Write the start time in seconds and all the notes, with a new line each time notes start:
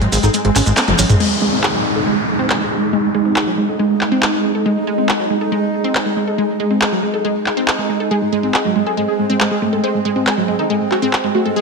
Already playing: G#3 C4
0.02 G#1 F#3 G#3, closed hi-hat
0.12 G#1 G#3, open hi-hat, maracas
0.23 G#1 D#4 A4, closed hi-hat, maracas
0.34 G#3, closed hi-hat, maracas
0.45 G#1 G#3, closed hi-hat
0.55 G#1 C#4, clap, open hi-hat, maracas
0.66 G#1 G#3, closed hi-hat, maracas
0.77 snare, clap, closed hi-hat, maracas
0.88 F#1 G#3 C4, closed hi-hat, high tom
0.99 G#1 F#3 C#4, open hi-hat, maracas
1.09 G#1 G#3, closed hi-hat, mid tom, maracas
1.20 G#3 D#4, crash, downlifter
1.42 G#3
1.53 C4
1.63 G#4, clap
1.74 F#3
1.85 G#3
1.96 A4
2.07 G#3
2.39 C4
2.50 clap
2.61 G#3
2.71 G#3
2.82 A4
2.93 G#3
3.15 G#3
3.25 C4
3.36 G#4, clap
3.47 F#3
3.58 G#3
3.69 A4
3.79 G#3
4.01 clap
4.12 C4
4.22 clap
4.33 G#3
4.44 G#3
4.55 A4
4.66 G#3
4.87 G#3
4.98 C4
5.09 G#4, clap
5.20 F#3
5.30 G#3
5.41 A4
5.52 G#3
5.84 C4
5.95 clap
6.06 G#3
6.17 G#3
6.28 A4
6.38 G#3
6.60 G#3
6.71 C4
6.81 G#4, clap
6.92 F#3
7.03 G#3
7.14 A4
7.25 G#3
7.46 clap
7.57 C4
7.68 clap
7.79 G#3
7.89 G#3
8.00 A4
8.11 G#3 C4 G#4
8.22 G#3
8.33 G#3
8.43 G#3 C4
8.54 G#4, clap
8.65 F#3 G#3
8.76 G#3
8.86 G#4 A4
8.97 G#3
9.08 G#4
9.19 G#3
9.30 G#3 C4
9.40 G#3, clap
9.51 G#3 G#4
9.62 G#3 A3
9.73 G#3 A4
9.84 G#3 C5
9.94 G#3
10.05 G#3
10.16 G#3 C4
10.27 G#4, clap
10.38 F#3 G#3
10.48 G#3
10.59 D#4 A4
10.70 G#3
10.81 G#3
10.92 F#4, clap
11.02 G#3 C4
11.13 clap
11.24 G#3
11.35 A3 F#4
11.45 G#3 A4
11.56 G#3 G#4